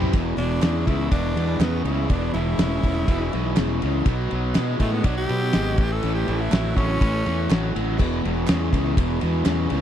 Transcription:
Already playing: F#2 C3 E3 G3 C4 E4 G4
0.02 floor tom
0.13 E1 E2 B2 E3 G#3 B3 E4, kick, ride
0.25 E3 G#3 B3 E4
0.37 E1 E2 B2 D4, ride
0.49 E3 G#3 B3 E4
0.62 E2 B2 C#3 E3 G#3 B3 E4, snare, clap, ride
0.75 E3 G#3 B3 E4
0.86 C#2 E2 C#3 E3 G#3 B3 E4, kick, ride
0.91 E4
0.98 E3 G#3 E4
1.11 E1 E2 B2 D4, kick, ride
1.23 E3 G#3 B3 E4
1.34 E2 B2 E3 G#3 B3 E4, ride
1.46 E3 G#3 B3 E4
1.59 E2 B2 C#3 E3 G#3 B3 E4, snare, clap, ride
1.83 C#2 E2 C#3 E3 G#3 B3 E4, ride
2.08 E1 E2 B2 E3 G#3 B3 D4 E4, kick, ride
2.20 E3 G#3 B3 E4
2.34 E1 E2 B2 E4, ride
2.45 E3 G#3 B3 E4
2.57 E1 E2 B2 C#3 E3 G#3 B3 E4, snare, clap, ride
2.69 E3 G#3 B3 E4
2.82 E1 E2 C#3 G#3 B3, kick, ride
2.94 E3 G#3 B3 E4
3.08 E1 E2 B2, kick, ride
3.19 E3 G#3 B3 E4
3.29 E2 B2 E3 G#3 B3 E4, ride
3.34 B1
3.44 E3 G#3 B3 E4
3.55 E1 E2 B2 C#3 E3 G#3 B3 E4, snare, clap, ride
3.80 C#2 E2 C#3 E3 G#3 B3 E4, ride
4.05 B1 B2 F#3 B3 D#4 F#4, kick, ride
4.31 B1 B2 F#3, ride
4.43 B3 D#4 F#4
4.54 B2 F#3 G#3 B3 D#4 F#4, snare, clap, ride
4.66 D#4 F#4
4.79 A2 B2 F#3 G#3 A3 B3 D#4 F#4, kick, ride
4.91 B3 D#4 F#4
5.04 B1 B2 F#3 D4, kick, ride
5.16 B3 D#4 F#4 G4
5.29 B2 F#3 B3 D#4 F#4, ride
5.40 B3 D#4 F#4
5.53 G#1 B2 F#3 G#3 B3 D#4 F#4, snare, clap, ride
5.77 A1 A2 E3 A3 C#4 E4, kick, ride
5.92 A4
6.02 A1 A2 E3 A3 C#4 E4, ride
6.15 A3 G4
6.27 A1 A2 E3, ride
6.38 A3 C#4 E4
6.50 A1 A2 E3 F#3 A3 C#4 E4, snare, clap, ride
6.63 A3 C#4 E4
6.75 A1 A2 E3 F#3 A3 C#4 E4, kick, ride
6.87 A3 C#4 E4
7.00 A1 A2 E3, kick, ride
7.11 A3 C#4 E4
7.22 E3 C#4
7.26 E2 A2 E3, ride
7.35 A3 C#4 E4
7.48 A1 A2 E3 F#3 A3 C#4 E4, snare, clap, ride
7.73 A1 A2 E3 F#3 A3 C#4 E4, ride
7.97 E1 E2 B2 E3 G#3 B3 E4, kick, crash
8.09 E3 G#3 B3 E4
8.23 E1 E2 B2, ride
8.34 E3 G#3 B3 E4
8.46 E2 B2 C#3 E3 G#3 B3 E4, snare, clap, ride
8.59 E3 G#3 B3 E4
8.70 C#2 E2 C#3 E3 G#3 B3 E4, kick, ride
8.84 E3 G#3 B3 E4
8.96 E1 E2 B2, kick, ride
9.08 E3 G#3 B3 E4
9.20 E2 B2 E3 G#3 B3 E4, ride
9.33 E3 G#3 B3 E4
9.45 E2 B2 C#3 E3 G#3 B3 E4, snare, clap, ride
9.69 C#2 E2 C#3 E3 G#3 B3 E4, ride

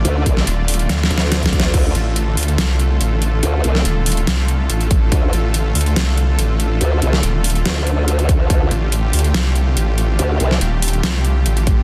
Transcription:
Already playing: D3 A3 F4 D5
0.05 D2, closed hi-hat
0.26 C2, kick, closed hi-hat
0.37 snare
0.47 D#1, closed hi-hat
0.68 open hi-hat
0.74 closed hi-hat
0.79 closed hi-hat
0.89 D2, snare, closed hi-hat
1.03 snare
1.10 D2, closed hi-hat
1.18 snare
1.32 snare, closed hi-hat
1.43 kick, snare, closed hi-hat
1.53 kick, closed hi-hat
1.60 snare
1.74 D2 A4, kick, closed hi-hat, crash
1.95 A1, closed hi-hat
2.16 closed hi-hat
2.37 D2, open hi-hat
2.43 closed hi-hat
2.48 closed hi-hat
2.58 C2, snare, closed hi-hat
2.80 closed hi-hat
3.01 A1, closed hi-hat
3.22 closed hi-hat
3.43 D2, closed hi-hat
3.64 C2, closed hi-hat
3.75 snare
3.85 D#1, closed hi-hat
4.06 open hi-hat
4.12 closed hi-hat
4.17 closed hi-hat
4.27 C2, snare, closed hi-hat
4.48 closed hi-hat
4.70 A1, closed hi-hat
4.81 closed hi-hat
4.91 kick, closed hi-hat
5.12 D2, kick, closed hi-hat
5.33 A1, closed hi-hat
5.54 closed hi-hat
5.75 D2, open hi-hat
5.81 closed hi-hat
5.86 closed hi-hat
5.96 C2, snare, closed hi-hat
6.18 closed hi-hat
6.39 A1, closed hi-hat
6.60 closed hi-hat
6.81 D2, closed hi-hat
7.02 C2, closed hi-hat
7.13 snare
7.23 D#1, closed hi-hat
7.44 open hi-hat
7.50 closed hi-hat
7.55 closed hi-hat
7.65 D2, snare, closed hi-hat
7.87 closed hi-hat
8.08 closed hi-hat
8.19 closed hi-hat
8.29 kick, closed hi-hat
8.50 D2 G4, kick, closed hi-hat
8.71 A1, closed hi-hat
8.92 closed hi-hat
9.13 D2, open hi-hat
9.19 closed hi-hat
9.24 closed hi-hat
9.34 C2, snare, closed hi-hat
9.56 closed hi-hat
9.77 A1, closed hi-hat
9.98 closed hi-hat
10.19 D2, closed hi-hat
10.40 C2, closed hi-hat
10.51 snare
10.61 D#1, closed hi-hat
10.82 open hi-hat
10.88 closed hi-hat
10.93 closed hi-hat
11.03 C2, snare, closed hi-hat
11.25 closed hi-hat
11.46 A1, closed hi-hat
11.57 closed hi-hat
11.67 kick, closed hi-hat

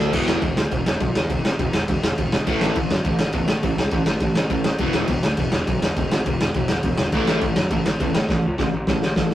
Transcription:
Already playing: D3 A3 D4
0.13 E1 E2 B2 E3, kick, crash
0.27 E1, snare
0.42 E1 E2 B2, kick, crash
0.57 D2, snare
0.71 E1 E2 B2, kick, crash
0.86 E1, snare
1.00 B1 E2 B2, kick, crash
1.15 E2, snare
1.30 E1 E2 B2, kick, crash
1.44 G#1, snare
1.59 E1 E2 B2, kick, crash
1.73 E1, snare
1.88 E1 E2 B2, kick, crash
2.03 E1, snare
2.18 E1 E2 B2, kick, crash
2.32 E1, snare
2.47 A1 A2 E3 A3, kick, crash
2.61 A1, snare
2.76 A1 A2 E3, kick, crash
2.91 F#2, snare
3.05 A1 A2 E3, kick, crash
3.19 A1, snare
3.33 E2 A2 E3, kick, crash
3.48 A2, snare
3.63 A1 A2 E3, kick, crash
3.77 C#2, snare
3.91 A1 A2 E3, kick, crash
4.06 A1, snare
4.20 A1 A2 E3, kick, crash
4.35 A1, snare
4.50 A1 A2 E3, kick, crash
4.64 A1, snare
4.78 E1 E2 B2 E3, kick, crash
4.93 E1, snare
5.08 E1 E2 B2, kick, crash
5.23 D2, snare
5.37 E1 E2 B2, kick, crash
5.52 E1, snare
5.67 B1 E2 B2, kick, crash
5.82 E2, snare
5.96 E1 E2 B2, kick, crash
6.11 G#1, snare
6.26 E1 E2 B2, kick, crash
6.41 E1, snare
6.54 E1 E2 B2, kick, crash
6.68 E1, snare
6.83 E1 E2 B2, kick, crash
6.98 E1, snare
7.12 A1 A2 E3 A3, kick, crash
7.27 A1, snare
7.41 A1 A2 E3, kick, crash
7.56 F#2, snare
7.70 A1 A2 E3, kick, crash
7.86 A1, snare
8.00 E2 A2 E3, kick, crash
8.15 A2, snare
8.29 A1 A2 E3, kick, snare
8.46 C#2
8.58 A1 A2 E3, kick, snare
8.74 A1
8.87 A1 A2 E3, kick, snare
9.02 A1, snare
9.16 A1 A2 E3, kick, snare

